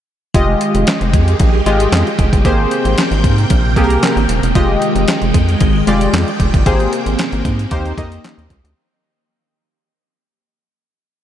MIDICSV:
0, 0, Header, 1, 5, 480
1, 0, Start_track
1, 0, Key_signature, -4, "minor"
1, 0, Tempo, 526316
1, 315, Time_signature, 4, 2, 24, 8
1, 10249, End_track
2, 0, Start_track
2, 0, Title_t, "Analog polysynth"
2, 0, Program_c, 0, 90
2, 315, Note_on_c, 0, 56, 77
2, 319, Note_on_c, 0, 65, 77
2, 322, Note_on_c, 0, 67, 72
2, 323, Note_on_c, 0, 75, 82
2, 812, Note_off_c, 0, 56, 0
2, 814, Note_off_c, 0, 65, 0
2, 816, Note_off_c, 0, 67, 0
2, 816, Note_off_c, 0, 75, 0
2, 1516, Note_on_c, 0, 56, 85
2, 1516, Note_on_c, 0, 65, 75
2, 1520, Note_on_c, 0, 67, 83
2, 1522, Note_on_c, 0, 75, 88
2, 1894, Note_off_c, 0, 56, 0
2, 1894, Note_off_c, 0, 65, 0
2, 1896, Note_off_c, 0, 67, 0
2, 1897, Note_off_c, 0, 75, 0
2, 2233, Note_on_c, 0, 58, 81
2, 2236, Note_on_c, 0, 67, 81
2, 2239, Note_on_c, 0, 68, 76
2, 2240, Note_on_c, 0, 72, 92
2, 2731, Note_off_c, 0, 58, 0
2, 2733, Note_off_c, 0, 67, 0
2, 2734, Note_off_c, 0, 68, 0
2, 2735, Note_off_c, 0, 72, 0
2, 3433, Note_on_c, 0, 58, 81
2, 3436, Note_on_c, 0, 67, 85
2, 3441, Note_on_c, 0, 68, 79
2, 3441, Note_on_c, 0, 69, 70
2, 3499, Note_off_c, 0, 69, 0
2, 3500, Note_on_c, 0, 70, 87
2, 3812, Note_off_c, 0, 58, 0
2, 3814, Note_off_c, 0, 67, 0
2, 3816, Note_off_c, 0, 68, 0
2, 3846, Note_off_c, 0, 70, 0
2, 4152, Note_on_c, 0, 56, 81
2, 4153, Note_on_c, 0, 65, 70
2, 4157, Note_on_c, 0, 67, 70
2, 4159, Note_on_c, 0, 75, 95
2, 4651, Note_off_c, 0, 56, 0
2, 4651, Note_off_c, 0, 65, 0
2, 4653, Note_off_c, 0, 67, 0
2, 4654, Note_off_c, 0, 75, 0
2, 5355, Note_on_c, 0, 56, 89
2, 5359, Note_on_c, 0, 65, 78
2, 5361, Note_on_c, 0, 67, 81
2, 5364, Note_on_c, 0, 74, 94
2, 5734, Note_off_c, 0, 56, 0
2, 5735, Note_off_c, 0, 65, 0
2, 5737, Note_off_c, 0, 67, 0
2, 5738, Note_off_c, 0, 74, 0
2, 6074, Note_on_c, 0, 58, 79
2, 6074, Note_on_c, 0, 67, 74
2, 6078, Note_on_c, 0, 68, 72
2, 6081, Note_on_c, 0, 72, 84
2, 6572, Note_off_c, 0, 58, 0
2, 6572, Note_off_c, 0, 67, 0
2, 6574, Note_off_c, 0, 68, 0
2, 6575, Note_off_c, 0, 72, 0
2, 7034, Note_on_c, 0, 58, 86
2, 7038, Note_on_c, 0, 63, 80
2, 7039, Note_on_c, 0, 67, 84
2, 7040, Note_on_c, 0, 72, 103
2, 7229, Note_off_c, 0, 58, 0
2, 7231, Note_off_c, 0, 63, 0
2, 7232, Note_off_c, 0, 67, 0
2, 7232, Note_off_c, 0, 72, 0
2, 7276, Note_on_c, 0, 58, 80
2, 7277, Note_on_c, 0, 63, 78
2, 7280, Note_on_c, 0, 67, 80
2, 7282, Note_on_c, 0, 75, 94
2, 7654, Note_off_c, 0, 58, 0
2, 7655, Note_off_c, 0, 63, 0
2, 7656, Note_off_c, 0, 67, 0
2, 7657, Note_off_c, 0, 75, 0
2, 10249, End_track
3, 0, Start_track
3, 0, Title_t, "String machine"
3, 0, Program_c, 1, 50
3, 313, Note_on_c, 1, 51, 84
3, 315, Note_on_c, 1, 67, 91
3, 318, Note_on_c, 1, 56, 74
3, 2215, Note_off_c, 1, 51, 0
3, 2215, Note_off_c, 1, 67, 0
3, 2217, Note_off_c, 1, 56, 0
3, 2230, Note_on_c, 1, 58, 80
3, 2233, Note_on_c, 1, 48, 88
3, 2233, Note_on_c, 1, 79, 92
3, 4133, Note_off_c, 1, 58, 0
3, 4134, Note_off_c, 1, 48, 0
3, 4134, Note_off_c, 1, 79, 0
3, 4157, Note_on_c, 1, 79, 93
3, 4158, Note_on_c, 1, 51, 85
3, 4159, Note_on_c, 1, 56, 82
3, 6057, Note_off_c, 1, 51, 0
3, 6057, Note_off_c, 1, 56, 0
3, 6073, Note_on_c, 1, 48, 75
3, 6077, Note_on_c, 1, 58, 77
3, 7024, Note_off_c, 1, 48, 0
3, 7026, Note_off_c, 1, 58, 0
3, 7031, Note_on_c, 1, 51, 84
3, 7035, Note_on_c, 1, 60, 76
3, 7959, Note_off_c, 1, 79, 0
3, 7983, Note_off_c, 1, 51, 0
3, 7985, Note_off_c, 1, 60, 0
3, 10249, End_track
4, 0, Start_track
4, 0, Title_t, "Analog synth bass"
4, 0, Program_c, 2, 38
4, 315, Note_on_c, 2, 29, 109
4, 509, Note_off_c, 2, 29, 0
4, 681, Note_on_c, 2, 29, 99
4, 773, Note_off_c, 2, 29, 0
4, 921, Note_on_c, 2, 29, 91
4, 1035, Note_on_c, 2, 41, 97
4, 1049, Note_off_c, 2, 29, 0
4, 1229, Note_off_c, 2, 41, 0
4, 1276, Note_on_c, 2, 34, 101
4, 1470, Note_off_c, 2, 34, 0
4, 1513, Note_on_c, 2, 32, 85
4, 1708, Note_off_c, 2, 32, 0
4, 1754, Note_on_c, 2, 41, 108
4, 1857, Note_off_c, 2, 41, 0
4, 1995, Note_on_c, 2, 29, 96
4, 2098, Note_off_c, 2, 29, 0
4, 2123, Note_on_c, 2, 31, 96
4, 2214, Note_off_c, 2, 31, 0
4, 2233, Note_on_c, 2, 32, 116
4, 2428, Note_off_c, 2, 32, 0
4, 2599, Note_on_c, 2, 32, 107
4, 2691, Note_off_c, 2, 32, 0
4, 2838, Note_on_c, 2, 32, 99
4, 2955, Note_on_c, 2, 44, 94
4, 2969, Note_off_c, 2, 32, 0
4, 3150, Note_off_c, 2, 44, 0
4, 3196, Note_on_c, 2, 34, 100
4, 3433, Note_on_c, 2, 36, 84
4, 3447, Note_off_c, 2, 34, 0
4, 3628, Note_off_c, 2, 36, 0
4, 3796, Note_on_c, 2, 32, 105
4, 3890, Note_off_c, 2, 32, 0
4, 3910, Note_on_c, 2, 27, 85
4, 4015, Note_off_c, 2, 27, 0
4, 4038, Note_on_c, 2, 28, 97
4, 4131, Note_off_c, 2, 28, 0
4, 4153, Note_on_c, 2, 29, 105
4, 4348, Note_off_c, 2, 29, 0
4, 4517, Note_on_c, 2, 29, 96
4, 4610, Note_off_c, 2, 29, 0
4, 4760, Note_on_c, 2, 29, 87
4, 4852, Note_off_c, 2, 29, 0
4, 4874, Note_on_c, 2, 41, 76
4, 5069, Note_off_c, 2, 41, 0
4, 5115, Note_on_c, 2, 32, 101
4, 5310, Note_off_c, 2, 32, 0
4, 5353, Note_on_c, 2, 29, 93
4, 5548, Note_off_c, 2, 29, 0
4, 5594, Note_on_c, 2, 41, 97
4, 5697, Note_off_c, 2, 41, 0
4, 5834, Note_on_c, 2, 29, 83
4, 5937, Note_off_c, 2, 29, 0
4, 5963, Note_on_c, 2, 31, 89
4, 6054, Note_off_c, 2, 31, 0
4, 6075, Note_on_c, 2, 32, 103
4, 6270, Note_off_c, 2, 32, 0
4, 6439, Note_on_c, 2, 32, 107
4, 6532, Note_off_c, 2, 32, 0
4, 6680, Note_on_c, 2, 32, 102
4, 6772, Note_off_c, 2, 32, 0
4, 6794, Note_on_c, 2, 44, 87
4, 6989, Note_off_c, 2, 44, 0
4, 7036, Note_on_c, 2, 39, 111
4, 7230, Note_off_c, 2, 39, 0
4, 7274, Note_on_c, 2, 41, 84
4, 7469, Note_off_c, 2, 41, 0
4, 7642, Note_on_c, 2, 39, 82
4, 7733, Note_off_c, 2, 39, 0
4, 7754, Note_on_c, 2, 37, 98
4, 7857, Note_off_c, 2, 37, 0
4, 7880, Note_on_c, 2, 38, 91
4, 7972, Note_off_c, 2, 38, 0
4, 10249, End_track
5, 0, Start_track
5, 0, Title_t, "Drums"
5, 315, Note_on_c, 9, 36, 122
5, 315, Note_on_c, 9, 42, 90
5, 406, Note_off_c, 9, 36, 0
5, 406, Note_off_c, 9, 42, 0
5, 555, Note_on_c, 9, 42, 60
5, 646, Note_off_c, 9, 42, 0
5, 681, Note_on_c, 9, 42, 49
5, 772, Note_off_c, 9, 42, 0
5, 793, Note_on_c, 9, 42, 99
5, 799, Note_on_c, 9, 38, 119
5, 810, Note_on_c, 9, 39, 84
5, 884, Note_off_c, 9, 42, 0
5, 890, Note_off_c, 9, 38, 0
5, 901, Note_off_c, 9, 39, 0
5, 922, Note_on_c, 9, 42, 37
5, 1013, Note_off_c, 9, 42, 0
5, 1035, Note_on_c, 9, 36, 103
5, 1036, Note_on_c, 9, 42, 95
5, 1127, Note_off_c, 9, 36, 0
5, 1127, Note_off_c, 9, 42, 0
5, 1166, Note_on_c, 9, 42, 44
5, 1257, Note_off_c, 9, 42, 0
5, 1273, Note_on_c, 9, 42, 93
5, 1277, Note_on_c, 9, 36, 101
5, 1364, Note_off_c, 9, 42, 0
5, 1368, Note_off_c, 9, 36, 0
5, 1517, Note_on_c, 9, 42, 64
5, 1608, Note_off_c, 9, 42, 0
5, 1642, Note_on_c, 9, 42, 53
5, 1733, Note_off_c, 9, 42, 0
5, 1755, Note_on_c, 9, 42, 91
5, 1757, Note_on_c, 9, 38, 127
5, 1767, Note_on_c, 9, 39, 95
5, 1846, Note_off_c, 9, 42, 0
5, 1848, Note_off_c, 9, 38, 0
5, 1859, Note_off_c, 9, 39, 0
5, 1888, Note_on_c, 9, 42, 30
5, 1979, Note_off_c, 9, 42, 0
5, 1995, Note_on_c, 9, 36, 93
5, 1995, Note_on_c, 9, 42, 74
5, 2086, Note_off_c, 9, 36, 0
5, 2086, Note_off_c, 9, 42, 0
5, 2124, Note_on_c, 9, 36, 93
5, 2125, Note_on_c, 9, 42, 54
5, 2215, Note_off_c, 9, 36, 0
5, 2217, Note_off_c, 9, 42, 0
5, 2234, Note_on_c, 9, 36, 125
5, 2234, Note_on_c, 9, 42, 90
5, 2325, Note_off_c, 9, 36, 0
5, 2325, Note_off_c, 9, 42, 0
5, 2474, Note_on_c, 9, 42, 63
5, 2566, Note_off_c, 9, 42, 0
5, 2602, Note_on_c, 9, 42, 49
5, 2693, Note_off_c, 9, 42, 0
5, 2715, Note_on_c, 9, 42, 96
5, 2720, Note_on_c, 9, 38, 110
5, 2731, Note_on_c, 9, 39, 85
5, 2806, Note_off_c, 9, 42, 0
5, 2812, Note_off_c, 9, 38, 0
5, 2822, Note_off_c, 9, 39, 0
5, 2842, Note_on_c, 9, 42, 36
5, 2933, Note_off_c, 9, 42, 0
5, 2955, Note_on_c, 9, 36, 108
5, 2956, Note_on_c, 9, 42, 84
5, 3046, Note_off_c, 9, 36, 0
5, 3048, Note_off_c, 9, 42, 0
5, 3085, Note_on_c, 9, 42, 41
5, 3176, Note_off_c, 9, 42, 0
5, 3193, Note_on_c, 9, 42, 95
5, 3196, Note_on_c, 9, 36, 103
5, 3284, Note_off_c, 9, 42, 0
5, 3287, Note_off_c, 9, 36, 0
5, 3433, Note_on_c, 9, 36, 99
5, 3435, Note_on_c, 9, 42, 62
5, 3524, Note_off_c, 9, 36, 0
5, 3526, Note_off_c, 9, 42, 0
5, 3560, Note_on_c, 9, 42, 56
5, 3651, Note_off_c, 9, 42, 0
5, 3673, Note_on_c, 9, 42, 101
5, 3675, Note_on_c, 9, 38, 127
5, 3686, Note_on_c, 9, 39, 99
5, 3764, Note_off_c, 9, 42, 0
5, 3766, Note_off_c, 9, 38, 0
5, 3777, Note_off_c, 9, 39, 0
5, 3804, Note_on_c, 9, 42, 33
5, 3895, Note_off_c, 9, 42, 0
5, 3913, Note_on_c, 9, 42, 78
5, 4004, Note_off_c, 9, 42, 0
5, 4043, Note_on_c, 9, 42, 57
5, 4134, Note_off_c, 9, 42, 0
5, 4152, Note_on_c, 9, 42, 88
5, 4153, Note_on_c, 9, 36, 111
5, 4244, Note_off_c, 9, 42, 0
5, 4245, Note_off_c, 9, 36, 0
5, 4394, Note_on_c, 9, 42, 69
5, 4485, Note_off_c, 9, 42, 0
5, 4520, Note_on_c, 9, 42, 49
5, 4611, Note_off_c, 9, 42, 0
5, 4630, Note_on_c, 9, 42, 93
5, 4636, Note_on_c, 9, 38, 119
5, 4646, Note_on_c, 9, 39, 98
5, 4721, Note_off_c, 9, 42, 0
5, 4727, Note_off_c, 9, 38, 0
5, 4737, Note_off_c, 9, 39, 0
5, 4757, Note_on_c, 9, 42, 37
5, 4849, Note_off_c, 9, 42, 0
5, 4873, Note_on_c, 9, 42, 82
5, 4874, Note_on_c, 9, 36, 103
5, 4965, Note_off_c, 9, 36, 0
5, 4965, Note_off_c, 9, 42, 0
5, 5003, Note_on_c, 9, 42, 38
5, 5094, Note_off_c, 9, 42, 0
5, 5112, Note_on_c, 9, 42, 89
5, 5116, Note_on_c, 9, 36, 112
5, 5203, Note_off_c, 9, 42, 0
5, 5207, Note_off_c, 9, 36, 0
5, 5356, Note_on_c, 9, 42, 68
5, 5447, Note_off_c, 9, 42, 0
5, 5482, Note_on_c, 9, 42, 57
5, 5573, Note_off_c, 9, 42, 0
5, 5596, Note_on_c, 9, 42, 104
5, 5598, Note_on_c, 9, 38, 119
5, 5609, Note_on_c, 9, 39, 94
5, 5687, Note_off_c, 9, 42, 0
5, 5689, Note_off_c, 9, 38, 0
5, 5700, Note_off_c, 9, 39, 0
5, 5727, Note_on_c, 9, 42, 31
5, 5818, Note_off_c, 9, 42, 0
5, 5835, Note_on_c, 9, 36, 81
5, 5835, Note_on_c, 9, 42, 75
5, 5926, Note_off_c, 9, 36, 0
5, 5926, Note_off_c, 9, 42, 0
5, 5964, Note_on_c, 9, 36, 105
5, 5967, Note_on_c, 9, 42, 55
5, 6055, Note_off_c, 9, 36, 0
5, 6058, Note_off_c, 9, 42, 0
5, 6075, Note_on_c, 9, 36, 109
5, 6076, Note_on_c, 9, 42, 90
5, 6167, Note_off_c, 9, 36, 0
5, 6167, Note_off_c, 9, 42, 0
5, 6203, Note_on_c, 9, 42, 35
5, 6294, Note_off_c, 9, 42, 0
5, 6317, Note_on_c, 9, 42, 66
5, 6408, Note_off_c, 9, 42, 0
5, 6442, Note_on_c, 9, 42, 46
5, 6533, Note_off_c, 9, 42, 0
5, 6554, Note_on_c, 9, 42, 100
5, 6560, Note_on_c, 9, 38, 113
5, 6571, Note_on_c, 9, 39, 96
5, 6646, Note_off_c, 9, 42, 0
5, 6651, Note_off_c, 9, 38, 0
5, 6662, Note_off_c, 9, 39, 0
5, 6680, Note_on_c, 9, 42, 35
5, 6771, Note_off_c, 9, 42, 0
5, 6795, Note_on_c, 9, 36, 115
5, 6796, Note_on_c, 9, 42, 84
5, 6886, Note_off_c, 9, 36, 0
5, 6887, Note_off_c, 9, 42, 0
5, 6925, Note_on_c, 9, 42, 42
5, 7016, Note_off_c, 9, 42, 0
5, 7032, Note_on_c, 9, 42, 83
5, 7037, Note_on_c, 9, 36, 110
5, 7124, Note_off_c, 9, 42, 0
5, 7128, Note_off_c, 9, 36, 0
5, 7164, Note_on_c, 9, 42, 33
5, 7255, Note_off_c, 9, 42, 0
5, 7275, Note_on_c, 9, 36, 93
5, 7277, Note_on_c, 9, 42, 65
5, 7366, Note_off_c, 9, 36, 0
5, 7369, Note_off_c, 9, 42, 0
5, 7404, Note_on_c, 9, 42, 53
5, 7495, Note_off_c, 9, 42, 0
5, 7518, Note_on_c, 9, 42, 98
5, 7520, Note_on_c, 9, 38, 127
5, 7531, Note_on_c, 9, 39, 104
5, 7610, Note_off_c, 9, 42, 0
5, 7612, Note_off_c, 9, 38, 0
5, 7622, Note_off_c, 9, 39, 0
5, 7649, Note_on_c, 9, 42, 32
5, 7741, Note_off_c, 9, 42, 0
5, 7755, Note_on_c, 9, 36, 80
5, 7755, Note_on_c, 9, 42, 75
5, 7846, Note_off_c, 9, 36, 0
5, 7846, Note_off_c, 9, 42, 0
5, 7887, Note_on_c, 9, 42, 52
5, 7978, Note_off_c, 9, 42, 0
5, 10249, End_track
0, 0, End_of_file